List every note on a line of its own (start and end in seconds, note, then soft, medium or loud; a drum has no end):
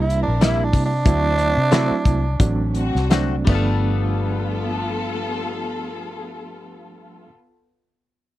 0.00 0.25 C2 loud
0.00 0.28 G3 medium
0.00 0.28 A#3 medium
0.00 0.28 D4 medium
0.00 0.28 E4 medium
0.00 0.21 E4 medium
0.10 0.59 C4 medium
0.10 0.59 E4 medium
0.10 0.60 A#4 medium
0.10 closed hi-hat medium
0.23 0.42 D4 medium
0.28 0.71 A#1 medium
0.41 0.62 C3 medium
0.41 0.92 G3 medium
0.41 0.62 G3 medium
0.41 0.92 A#3 medium
0.41 0.63 A#3 medium
0.41 0.92 D4 medium
0.41 0.92 E4 medium
0.41 0.63 E4 medium
0.41 0.66 E4 loud
0.41 snare loud
0.41 closed hi-hat medium
0.64 0.84 D4 medium
0.73 1.07 C3 medium
0.73 kick medium
0.73 open hi-hat medium
0.86 2.84 D4 loud
1.05 1.54 D2 medium
1.05 1.57 F#3 medium
1.05 1.58 A3 medium
1.05 1.58 C4 medium
1.05 1.72 C4 medium
1.05 1.72 D4 medium
1.05 1.58 E4 medium
1.05 1.72 F#4 medium
1.05 kick loud
1.05 closed hi-hat medium
1.38 closed hi-hat medium
1.57 1.89 C3 medium
1.72 1.94 D3 medium
1.72 2.25 F#3 medium
1.72 2.25 A3 medium
1.72 1.94 A3 medium
1.72 2.25 C4 medium
1.72 1.94 C4 medium
1.72 2.25 E4 loud
1.72 1.94 F#4 loud
1.72 snare loud
1.72 closed hi-hat medium
1.91 muted fingered electric bass stroke soft
2.05 2.38 C2 medium
2.05 kick medium
2.05 closed hi-hat medium
2.40 2.92 A1 loud
2.40 2.95 F#3 medium
2.40 2.95 A3 medium
2.40 2.95 C4 medium
2.40 2.95 D4 medium
2.40 kick medium
2.40 closed hi-hat medium
2.74 3.31 C4 medium
2.74 3.31 D4 medium
2.74 3.31 F#4 loud
2.74 closed hi-hat medium
2.95 3.44 C2 medium
2.95 snare soft
3.10 3.35 D3 medium
3.10 3.47 F#3 medium
3.10 3.46 A3 medium
3.10 3.35 A3 medium
3.10 3.47 C4 medium
3.10 3.35 C4 loud
3.10 3.47 D4 loud
3.10 3.35 F#4 loud
3.10 snare loud
3.10 closed hi-hat medium
3.45 7.27 G1 medium
3.45 7.25 F3 medium
3.45 7.28 G3 medium
3.45 7.27 A3 medium
3.45 7.27 B3 medium
3.45 7.28 B3 medium
3.45 7.32 B3 medium
3.45 7.27 F4 medium
3.45 7.27 A4 loud
3.45 kick loud
3.45 crash medium
3.50 7.29 D4 medium
3.50 7.36 F4 medium
3.55 7.38 A4 medium